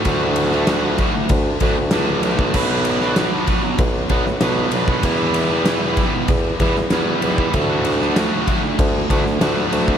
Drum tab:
CC |----------------|x---------------|----------------|----------------|
RD |x-x-x-x-x-x-x-x-|--x-x-x-x-x-x-x-|x-x-x-x-x-x-x-x-|x-x-x-x-x-x-x-x-|
SD |---oo-------o---|---oo------oo---|----o------oo---|---oo------oo---|
BD |o-----o-o-o----o|o-----o-o-o----o|o-----o-o-o----o|o-----o-o-o----o|